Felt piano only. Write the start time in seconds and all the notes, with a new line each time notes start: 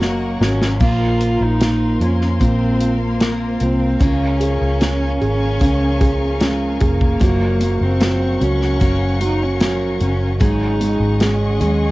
0.00 F#3
0.41 F#3
0.81 A#3
1.21 F4
1.60 A#3
2.01 F4
2.40 A#3
2.81 F4
3.21 A#3
3.61 F4
4.00 C#4
4.40 G#4
4.81 C#4
5.21 G#4
5.61 C#4
6.01 G#4
6.41 C#4
6.80 G#4
7.20 F#3
7.60 F#3
8.00 F#3
8.41 F#3
8.81 F#3
9.21 F#3
9.61 F#3
10.01 F#3
10.41 G#3
10.81 G#3
11.21 G#3
11.61 G#3